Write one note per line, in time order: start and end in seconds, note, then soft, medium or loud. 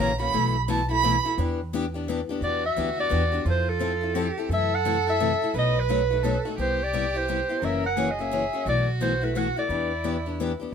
0.00 0.29 A#1 medium
0.00 0.10 C#3 medium
0.00 0.11 E3 medium
0.00 0.11 A#3 medium
0.00 0.11 C#4 loud
0.00 0.11 F#4 loud
0.00 0.20 A#5 medium
0.19 0.34 A#3 soft
0.19 0.33 C#4 medium
0.19 0.33 F#4 medium
0.19 0.53 B5 loud
0.33 1.17 B1 medium
0.33 0.55 B2 medium
0.33 0.55 E3 medium
0.33 0.55 A3 medium
0.33 0.55 E4 medium
0.33 0.56 F#4 medium
0.68 0.80 B2 medium
0.68 0.80 E3 medium
0.68 0.80 A3 medium
0.68 0.80 E4 loud
0.68 0.81 F#4 loud
0.68 0.89 A5 medium
0.89 1.03 A3 soft
0.89 1.03 E4 medium
0.89 1.03 F#4 medium
0.89 1.23 B5 loud
1.04 1.15 B2 medium
1.04 1.15 E3 medium
1.04 1.15 A3 medium
1.04 1.15 E4 medium
1.04 1.15 F#4 loud
1.25 1.38 A3 soft
1.25 1.38 E4 medium
1.25 1.38 F#4 medium
1.38 2.21 E2 medium
1.38 1.59 E3 medium
1.38 1.60 B3 medium
1.38 1.60 D4 medium
1.38 1.60 G4 medium
1.73 1.84 E3 medium
1.73 1.84 B3 medium
1.73 1.85 D4 loud
1.73 1.85 G4 loud
1.94 2.08 B3 medium
1.94 2.08 D4 medium
1.94 2.07 G4 medium
2.08 2.19 E3 medium
2.08 2.20 B3 medium
2.08 2.20 D4 medium
2.08 2.20 G4 loud
2.29 2.41 B3 medium
2.29 2.42 D4 medium
2.29 2.42 G4 medium
2.41 2.69 E2 medium
2.41 2.63 E3 medium
2.41 2.63 B3 medium
2.41 2.64 D4 medium
2.41 3.46 F#4 loud
2.41 2.64 G4 medium
2.41 2.63 D5 loud
2.66 2.97 E5 medium
2.77 3.07 D2 medium
2.77 2.88 E3 medium
2.77 2.88 B3 medium
2.77 2.89 D4 medium
2.77 2.89 G4 medium
2.98 3.09 B3 soft
2.98 3.10 D4 soft
2.98 3.10 G4 soft
2.98 3.44 D5 medium
3.09 3.41 E2 medium
3.09 3.22 E3 medium
3.09 3.22 B3 medium
3.09 3.22 D4 medium
3.09 3.22 G4 medium
3.32 3.46 B3 soft
3.32 3.46 D4 medium
3.32 3.45 G4 medium
3.45 4.29 F2 medium
3.45 3.67 F3 medium
3.45 3.67 C4 medium
3.45 3.67 E4 medium
3.45 4.16 F4 medium
3.45 3.68 A4 medium
3.50 3.71 C5 loud
3.70 4.38 A4 medium
3.79 3.91 F3 medium
3.79 3.92 C4 medium
3.79 3.92 E4 medium
3.79 3.92 A4 medium
4.01 4.14 C4 soft
4.01 4.15 E4 soft
4.01 4.14 A4 soft
4.14 4.26 F3 medium
4.14 4.27 C4 medium
4.14 4.27 E4 medium
4.14 4.51 G4 medium
4.14 4.27 A4 loud
4.38 4.51 C4 soft
4.38 4.51 E4 medium
4.38 4.50 A4 medium
4.49 5.33 F#2 medium
4.49 4.72 C3 medium
4.49 4.72 E3 medium
4.49 4.72 A3 medium
4.49 4.72 E4 medium
4.49 4.72 F#4 medium
4.49 5.56 A4 loud
4.54 4.76 E5 loud
4.75 5.08 F#5 loud
4.85 4.96 C3 medium
4.85 4.96 E3 medium
4.85 4.96 A3 medium
4.85 4.97 E4 medium
4.85 4.97 F#4 loud
5.07 5.19 A3 soft
5.07 5.20 E4 soft
5.07 5.20 F#4 medium
5.07 5.53 E5 loud
5.20 5.31 C3 medium
5.20 5.31 E3 medium
5.20 5.31 A3 medium
5.20 5.31 E4 medium
5.20 5.32 F#4 medium
5.42 5.54 A3 soft
5.42 5.55 E4 medium
5.42 5.54 F#4 medium
5.54 6.37 B1 medium
5.54 5.75 B2 medium
5.54 5.76 F#3 medium
5.54 5.76 A3 medium
5.54 5.76 D#4 medium
5.54 5.76 F#4 medium
5.54 6.24 B4 loud
5.59 5.81 D#5 loud
5.80 6.47 B4 medium
5.89 6.00 B2 medium
5.89 6.00 F#3 medium
5.89 6.01 A3 medium
5.89 6.01 D#4 medium
5.89 6.01 F#4 medium
6.10 6.23 A3 soft
6.10 6.24 D#4 soft
6.10 6.23 F#4 soft
6.22 6.35 B2 medium
6.22 6.35 F#3 medium
6.22 6.35 A3 medium
6.22 6.36 D#4 loud
6.22 6.36 F#4 medium
6.22 6.58 A4 medium
6.45 6.59 A3 soft
6.45 6.58 D#4 medium
6.45 6.58 F#4 medium
6.58 7.41 C2 medium
6.58 6.79 C3 medium
6.58 6.79 G3 medium
6.58 6.80 B3 medium
6.58 6.80 E4 medium
6.58 7.58 G4 loud
6.58 6.80 G4 medium
6.58 6.85 C5 medium
6.83 7.18 D5 medium
6.93 7.04 C3 medium
6.93 7.04 G3 medium
6.93 7.05 B3 medium
6.93 7.05 E4 medium
6.93 7.05 G4 medium
7.14 7.28 B3 soft
7.14 7.28 E4 medium
7.14 7.27 G4 soft
7.14 7.66 C5 medium
7.28 7.39 C3 medium
7.28 7.39 G3 medium
7.28 7.40 B3 medium
7.28 7.40 E4 medium
7.28 7.40 G4 medium
7.49 7.63 B3 soft
7.49 7.62 E4 medium
7.49 7.62 G4 medium
7.62 8.45 F#1 medium
7.62 7.83 C#3 medium
7.62 7.84 E3 medium
7.62 7.84 A#3 medium
7.62 7.84 C#4 medium
7.62 7.84 F#4 medium
7.62 7.98 A#4 medium
7.62 7.85 E5 medium
7.86 8.13 F#5 medium
7.96 8.08 C#3 medium
7.96 8.08 E3 medium
7.96 8.08 A#3 medium
7.96 8.09 C#4 medium
7.96 8.08 F#4 medium
7.96 8.68 G#4 medium
8.11 8.22 D#5 medium
8.19 8.31 A#3 soft
8.19 8.31 C#4 soft
8.19 8.31 F#4 medium
8.19 8.67 E5 medium
8.31 8.43 C#3 medium
8.31 8.43 E3 medium
8.31 8.43 A#3 medium
8.31 8.43 C#4 medium
8.31 8.43 F#4 medium
8.53 8.67 A#3 soft
8.53 8.66 C#4 medium
8.53 8.66 F#4 medium
8.66 9.49 B1 medium
8.66 8.87 B2 medium
8.66 8.87 E3 medium
8.66 8.88 A3 medium
8.66 8.88 E4 medium
8.66 9.35 F#4 medium
8.66 8.88 F#4 medium
8.66 8.88 D5 medium
9.01 9.12 B2 medium
9.01 9.12 E3 medium
9.01 9.12 A3 medium
9.01 9.13 E4 medium
9.01 9.13 F#4 medium
9.01 9.26 C5 medium
9.22 9.35 A3 soft
9.22 9.35 E4 soft
9.22 9.35 F#4 medium
9.22 9.39 B4 medium
9.35 9.47 B2 medium
9.35 9.47 E3 medium
9.35 9.47 A3 medium
9.35 9.47 E4 medium
9.35 9.68 F#4 medium
9.35 9.47 F#4 medium
9.35 9.58 F#5 medium
9.56 9.69 A3 soft
9.56 9.70 E4 medium
9.56 9.69 F#4 medium
9.56 10.37 D5 medium
9.69 10.53 E2 medium
9.69 9.91 E3 medium
9.69 9.91 B3 medium
9.69 9.91 D4 medium
9.69 10.57 E4 medium
9.69 9.91 G4 medium
10.04 10.16 E3 medium
10.04 10.16 B3 medium
10.04 10.16 D4 medium
10.04 10.16 G4 medium
10.26 10.39 B3 soft
10.26 10.39 D4 soft
10.26 10.39 G4 soft
10.40 10.51 E3 medium
10.40 10.51 B3 medium
10.40 10.51 D4 medium
10.40 10.52 G4 medium
10.60 10.74 B3 soft
10.60 10.74 D4 medium
10.60 10.73 G4 medium